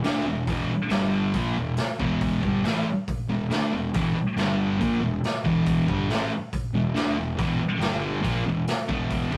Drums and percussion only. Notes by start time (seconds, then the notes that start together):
0.04 snare, open hi-hat
0.47 kick, open hi-hat
0.90 snare, open hi-hat
1.34 kick, open hi-hat
1.77 snare, open hi-hat
2.00 kick
2.21 kick, open hi-hat
2.43 kick
2.65 snare, open hi-hat
3.08 kick, open hi-hat
3.51 snare, open hi-hat
3.94 kick, open hi-hat
4.37 snare, open hi-hat
4.81 kick, open hi-hat
5.24 snare, open hi-hat
5.45 kick
5.66 kick, open hi-hat
5.88 kick
6.10 snare, open hi-hat
6.53 kick, open hi-hat
6.96 snare, open hi-hat
7.39 kick, open hi-hat
7.81 snare, open hi-hat
8.24 kick, open hi-hat
8.67 snare, open hi-hat
8.89 kick
9.10 kick, open hi-hat
9.32 kick